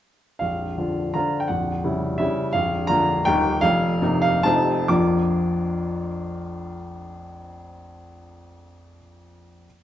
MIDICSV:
0, 0, Header, 1, 2, 480
1, 0, Start_track
1, 0, Key_signature, -2, "major"
1, 0, Tempo, 366748
1, 535, Time_signature, 3, 2, 24, 8
1, 1509, Tempo, 348635
1, 3909, Tempo, 375704
1, 5349, Tempo, 434468
1, 7749, Tempo, 452489
1, 8709, Tempo, 414651
1, 11872, End_track
2, 0, Start_track
2, 0, Title_t, "Grand piano"
2, 0, Program_c, 0, 0
2, 513, Note_on_c, 0, 77, 60
2, 529, Note_on_c, 0, 22, 36
2, 536, Note_on_c, 0, 34, 36
2, 841, Control_c, 0, 64, 127
2, 1007, Note_off_c, 0, 22, 0
2, 1010, Note_off_c, 0, 34, 0
2, 1019, Note_on_c, 0, 50, 31
2, 1025, Note_on_c, 0, 53, 31
2, 1034, Note_on_c, 0, 65, 32
2, 1458, Note_off_c, 0, 50, 0
2, 1461, Note_off_c, 0, 53, 0
2, 1466, Note_off_c, 0, 65, 0
2, 1488, Note_on_c, 0, 82, 63
2, 1498, Note_off_c, 0, 77, 0
2, 1509, Note_on_c, 0, 50, 41
2, 1513, Note_on_c, 0, 53, 37
2, 1518, Note_on_c, 0, 65, 45
2, 1521, Control_c, 0, 64, 0
2, 1849, Note_on_c, 0, 79, 61
2, 1854, Note_off_c, 0, 82, 0
2, 1934, Note_off_c, 0, 50, 0
2, 1937, Note_off_c, 0, 53, 0
2, 1939, Note_off_c, 0, 65, 0
2, 1956, Note_on_c, 0, 78, 57
2, 1974, Note_off_c, 0, 79, 0
2, 1974, Note_on_c, 0, 22, 40
2, 1977, Note_on_c, 0, 34, 41
2, 2249, Control_c, 0, 64, 127
2, 2454, Note_off_c, 0, 22, 0
2, 2455, Note_off_c, 0, 34, 0
2, 2458, Note_on_c, 0, 49, 38
2, 2465, Note_on_c, 0, 55, 36
2, 2467, Note_on_c, 0, 64, 36
2, 2900, Note_off_c, 0, 49, 0
2, 2904, Note_off_c, 0, 55, 0
2, 2905, Note_off_c, 0, 64, 0
2, 2921, Note_on_c, 0, 76, 67
2, 2944, Note_off_c, 0, 78, 0
2, 2944, Note_on_c, 0, 49, 44
2, 2950, Note_on_c, 0, 55, 44
2, 2958, Note_on_c, 0, 64, 47
2, 2976, Control_c, 0, 64, 0
2, 3369, Note_off_c, 0, 49, 0
2, 3373, Note_off_c, 0, 55, 0
2, 3377, Note_off_c, 0, 64, 0
2, 3400, Note_on_c, 0, 77, 78
2, 3405, Note_off_c, 0, 76, 0
2, 3418, Note_on_c, 0, 22, 51
2, 3419, Note_on_c, 0, 34, 52
2, 3668, Control_c, 0, 64, 127
2, 3877, Note_on_c, 0, 82, 93
2, 3892, Note_off_c, 0, 22, 0
2, 3893, Note_off_c, 0, 34, 0
2, 3898, Note_off_c, 0, 77, 0
2, 3901, Note_on_c, 0, 50, 44
2, 3906, Note_on_c, 0, 58, 46
2, 3914, Note_on_c, 0, 65, 48
2, 4331, Note_off_c, 0, 50, 0
2, 4333, Note_off_c, 0, 58, 0
2, 4337, Note_off_c, 0, 65, 0
2, 4364, Note_on_c, 0, 79, 92
2, 4367, Note_off_c, 0, 82, 0
2, 4381, Note_on_c, 0, 39, 64
2, 4381, Note_on_c, 0, 51, 43
2, 4384, Note_on_c, 0, 27, 60
2, 4393, Note_on_c, 0, 58, 48
2, 4393, Note_on_c, 0, 63, 47
2, 4395, Control_c, 0, 64, 0
2, 4616, Control_c, 0, 64, 127
2, 4797, Note_off_c, 0, 51, 0
2, 4803, Note_off_c, 0, 58, 0
2, 4803, Note_off_c, 0, 63, 0
2, 4823, Note_on_c, 0, 77, 92
2, 4829, Note_off_c, 0, 39, 0
2, 4831, Note_off_c, 0, 27, 0
2, 4834, Note_off_c, 0, 79, 0
2, 4840, Note_on_c, 0, 29, 62
2, 4841, Note_on_c, 0, 41, 60
2, 4858, Control_c, 0, 64, 0
2, 5128, Control_c, 0, 64, 127
2, 5332, Note_off_c, 0, 29, 0
2, 5332, Note_off_c, 0, 41, 0
2, 5345, Note_on_c, 0, 48, 52
2, 5346, Note_on_c, 0, 58, 48
2, 5356, Note_on_c, 0, 63, 54
2, 5546, Note_off_c, 0, 77, 0
2, 5563, Note_on_c, 0, 77, 86
2, 5777, Note_off_c, 0, 48, 0
2, 5778, Note_off_c, 0, 58, 0
2, 5783, Note_off_c, 0, 63, 0
2, 5803, Note_on_c, 0, 81, 87
2, 5812, Note_off_c, 0, 77, 0
2, 5818, Note_on_c, 0, 29, 60
2, 5821, Note_on_c, 0, 41, 65
2, 5821, Note_on_c, 0, 48, 46
2, 5830, Note_on_c, 0, 60, 45
2, 5835, Note_on_c, 0, 63, 47
2, 5839, Control_c, 0, 64, 0
2, 6073, Control_c, 0, 64, 127
2, 6273, Note_off_c, 0, 48, 0
2, 6277, Note_off_c, 0, 60, 0
2, 6280, Note_off_c, 0, 63, 0
2, 6288, Note_off_c, 0, 41, 0
2, 6300, Note_on_c, 0, 86, 64
2, 6301, Note_off_c, 0, 29, 0
2, 6302, Note_on_c, 0, 34, 55
2, 6305, Note_on_c, 0, 41, 45
2, 6307, Note_on_c, 0, 58, 50
2, 6308, Note_off_c, 0, 81, 0
2, 6308, Note_on_c, 0, 53, 51
2, 6313, Note_on_c, 0, 62, 46
2, 6314, Note_on_c, 0, 65, 48
2, 6334, Control_c, 0, 64, 0
2, 6596, Control_c, 0, 64, 127
2, 10884, Note_off_c, 0, 86, 0
2, 10885, Note_off_c, 0, 34, 0
2, 10886, Note_off_c, 0, 41, 0
2, 10887, Note_off_c, 0, 58, 0
2, 10888, Note_off_c, 0, 53, 0
2, 10891, Note_off_c, 0, 62, 0
2, 10891, Note_off_c, 0, 65, 0
2, 11674, Control_c, 0, 64, 0
2, 11872, End_track
0, 0, End_of_file